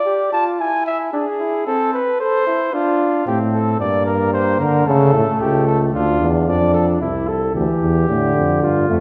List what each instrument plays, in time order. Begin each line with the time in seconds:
Already playing: trumpet D5
0.06 flugelhorn G4
0.32 flugelhorn F4, trumpet A5
0.59 flugelhorn E4, trumpet G#5
0.86 trumpet E5
1.13 flugelhorn D4, trumpet G#4
1.40 flugelhorn E4
1.66 flugelhorn C4, trumpet A4
1.93 trumpet B4
2.19 flugelhorn A4, trumpet C5
2.47 flugelhorn E4
2.73 flugelhorn D4, trumpet F4
3.26 bass trombone A2, flugelhorn C4, trumpet G4
3.53 trumpet A4
3.80 bass trombone G2, flugelhorn A#3, trumpet D5
4.06 trumpet A#4
4.33 trumpet C5
4.60 bass trombone D3, trumpet A#4
4.86 bass trombone C#3, flugelhorn A3, trumpet A4
5.14 bass trombone A2
5.40 bass trombone C#2, trumpet G4
5.67 trumpet A4
5.93 bass trombone D2, flugelhorn D4, trumpet F4
6.21 bass trombone E2
6.47 bass trombone F2, flugelhorn D4, trumpet D5
6.74 trumpet A4
7.01 bass trombone C2, flugelhorn E4
7.28 flugelhorn A4
7.55 bass trombone D2, trombone E3, flugelhorn G4
7.82 bass trombone E2
8.09 bass trombone A2, trombone D3
8.36 bass trombone F2
8.62 bass trombone G2, flugelhorn F4
8.89 bass trombone F2, trombone A3